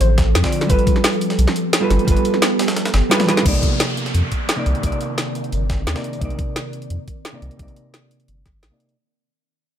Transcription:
Already playing: hollow-body jazz guitar D3 C4 F4 D5, ambient pad F3 C4 A4 D6
0.01 sub bass A1, synth pluck C5, closed hi-hat
0.18 kick, snare, closed hi-hat
0.35 sub bass F2, snare, closed hi-hat
0.43 hollow-body jazz guitar D3 C4 F4 D5, kick, snare, closed hi-hat
0.52 open hi-hat
0.61 snare, closed hi-hat
0.67 sub bass G1, hollow-body jazz guitar G3 F4, ambient pad B3 G4 A4, synth pluck B4, kick, closed hi-hat
0.71 hollow-body jazz guitar A4 B4
0.79 closed hi-hat
0.87 kick, closed hi-hat
0.96 snare
1.04 snare, closed hi-hat
1.13 closed hi-hat
1.21 closed hi-hat, open hi-hat
1.30 snare, closed hi-hat
1.39 sub bass B1, closed hi-hat
1.47 snare
1.56 closed hi-hat
1.73 snare, closed hi-hat
1.81 hollow-body jazz guitar G3 F4 A4 B4
1.90 sub bass G1, snare, closed hi-hat, open hi-hat
1.99 closed hi-hat
2.05 sub bass G1, hollow-body jazz guitar G3 F4, kick, closed hi-hat
2.09 hollow-body jazz guitar A4 B4
2.17 closed hi-hat
2.25 closed hi-hat
2.34 snare
2.42 snare, closed hi-hat
2.59 snare, closed hi-hat, open hi-hat
2.68 snare, closed hi-hat
2.76 snare, closed hi-hat
2.85 snare, closed hi-hat
2.94 sub bass G1, snare, closed hi-hat
3.10 hollow-body jazz guitar G3 F4 A4 B4, snare, closed hi-hat
3.20 snare, closed hi-hat, high tom
3.27 hollow-body jazz guitar G3 F4 A4 B4, snare, open hi-hat
3.37 snare, closed hi-hat
3.42 sub bass C2, hollow-body jazz guitar C3 A#3, ambient pad D#3 C4 A#4 D5, kick, closed hi-hat, crash, downlifter
3.46 hollow-body jazz guitar D#4 D5
3.54 closed hi-hat
3.63 kick, closed hi-hat
3.80 snare, closed hi-hat
3.89 closed hi-hat
3.97 closed hi-hat
4.06 snare, closed hi-hat
4.14 sub bass F2, closed hi-hat
4.32 kick, closed hi-hat
4.49 snare, closed hi-hat
4.56 hollow-body jazz guitar C3 A#3 D#4 D5
4.66 sub bass C2, closed hi-hat
4.75 closed hi-hat
4.80 sub bass C2, hollow-body jazz guitar C3 A#3, kick, closed hi-hat
4.85 hollow-body jazz guitar D#4 D5
4.92 closed hi-hat
5.01 closed hi-hat
5.18 snare, closed hi-hat
5.35 closed hi-hat
5.44 closed hi-hat
5.52 sub bass G1, closed hi-hat
5.70 kick, snare, closed hi-hat
5.87 sub bass D#2, snare, closed hi-hat
5.94 hollow-body jazz guitar C3 A#3 D#4 D5, snare, closed hi-hat
6.04 closed hi-hat
6.13 closed hi-hat
6.19 sub bass C2, hollow-body jazz guitar C3 A#3, kick, closed hi-hat
6.23 hollow-body jazz guitar D#4 D5
6.30 closed hi-hat
6.39 kick, closed hi-hat
6.56 snare, closed hi-hat
6.73 closed hi-hat
6.82 closed hi-hat
6.90 sub bass F2, closed hi-hat
7.08 kick, closed hi-hat
7.25 snare, closed hi-hat
7.32 hollow-body jazz guitar C3 A#3 D#4 D5
7.42 sub bass C2, closed hi-hat
7.51 closed hi-hat
7.57 sub bass C2, hollow-body jazz guitar C3 A#3, kick, closed hi-hat
7.61 hollow-body jazz guitar D#4 D5
7.68 closed hi-hat
7.76 closed hi-hat
7.94 snare, closed hi-hat
8.11 closed hi-hat
8.20 closed hi-hat
8.28 sub bass G1, closed hi-hat
8.46 sub bass G1, kick, snare, closed hi-hat
8.63 sub bass A#1, snare, closed hi-hat
8.70 hollow-body jazz guitar C3 A#3 D#4 D5
8.80 closed hi-hat
8.89 closed hi-hat

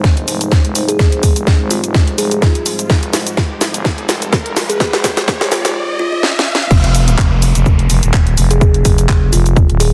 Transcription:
Already playing: fm bass G1, analog synth pad G#3 F4 G4 C5, ambient pad G#3 D#4 C5, riser
0.04 kick, snare, cabasa
0.17 closed hi-hat
0.28 fm bass F1, open hi-hat, cabasa
0.41 closed hi-hat, cabasa
0.52 kick, snare, cabasa
0.65 fm bass F1, closed hi-hat
0.75 open hi-hat, cabasa
0.88 kalimba G#4, closed hi-hat, cabasa
0.99 kalimba G#4, kick, snare, cabasa
1.12 fm bass F1, closed hi-hat
1.23 kick, open hi-hat, cabasa
1.36 fm bass F1, closed hi-hat, cabasa
1.47 kick, snare, cabasa
1.60 fm bass G#1
1.71 kalimba F4, open hi-hat, cabasa
1.84 fm bass F1, closed hi-hat, cabasa
1.94 kick, snare, cabasa
2.07 closed hi-hat
2.18 fm bass F1, kalimba G#4, open hi-hat, cabasa
2.31 kalimba G#4, closed hi-hat, cabasa
2.42 kalimba F4, kick, snare, cabasa
2.55 closed hi-hat
2.66 open hi-hat, cabasa
2.79 closed hi-hat, cabasa
2.90 fm bass F1, kick, snare, cabasa
3.03 closed hi-hat
3.13 snare, open hi-hat, cabasa
3.27 closed hi-hat, cabasa
3.37 kick, snare, cabasa
3.61 snare, open hi-hat, cabasa
3.74 fm bass G1, closed hi-hat, cabasa
3.85 kick, snare, cabasa
3.98 closed hi-hat
4.09 fm bass F1, snare, open hi-hat, cabasa
4.22 closed hi-hat, cabasa
4.33 kick, snare, cabasa
4.46 fm bass F1, closed hi-hat
4.57 snare, open hi-hat, cabasa
4.69 kalimba G#4, closed hi-hat, cabasa
4.80 kalimba G#4, kick, snare, cabasa
4.93 fm bass F1, snare, closed hi-hat
5.04 kick, snare, open hi-hat, cabasa
5.17 fm bass F1, snare, closed hi-hat, cabasa
5.28 kick, snare, cabasa
5.41 fm bass G#1, snare
5.52 kalimba F4, snare, open hi-hat, cabasa
5.65 fm bass F1, snare, closed hi-hat, cabasa
5.99 kalimba F4
6.12 kalimba F4
6.23 snare
6.39 snare
6.55 snare
6.71 fm bass F1, kick, crash, downlifter, cabasa
6.84 closed hi-hat
6.95 open hi-hat, cabasa
7.08 closed hi-hat, cabasa
7.18 fm bass F1, kick, clap, cabasa
7.42 open hi-hat, cabasa
7.55 fm bass F1, closed hi-hat, cabasa
7.66 kick, cabasa
7.79 closed hi-hat
7.90 fm bass F1, open hi-hat, cabasa
8.03 fm bass D#1, closed hi-hat, cabasa
8.14 kick, clap, cabasa
8.27 closed hi-hat
8.37 fm bass F1, open hi-hat, cabasa
8.51 kalimba G#4, closed hi-hat, cabasa
8.61 kalimba G#4, kick, cabasa
8.74 closed hi-hat
8.85 fm bass F1, kick, open hi-hat, cabasa
8.98 closed hi-hat, cabasa
9.09 kick, clap, cabasa
9.32 fm bass F1, kalimba F4, open hi-hat, cabasa
9.46 closed hi-hat, cabasa
9.57 kick, cabasa
9.70 fm bass D#1, closed hi-hat
9.80 kalimba G#4, open hi-hat, cabasa

